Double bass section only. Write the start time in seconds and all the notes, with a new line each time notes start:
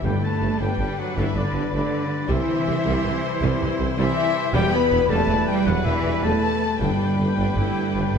0.03 G1
0.41 G1
0.59 G1
0.78 G1
1.16 G1
1.35 G1
1.53 G1
1.72 G1
2.29 C2
2.67 C2
2.85 C2
3.04 C2
3.41 C2
3.60 C2
3.79 C2
3.98 C2
4.54 E1
4.91 E1
5.09 E1
5.28 E1
5.66 E1
5.85 E1
6.04 E1
6.22 E1
6.80 G1
7.18 G1
7.38 G1
7.56 G1
7.95 G1
8.13 G1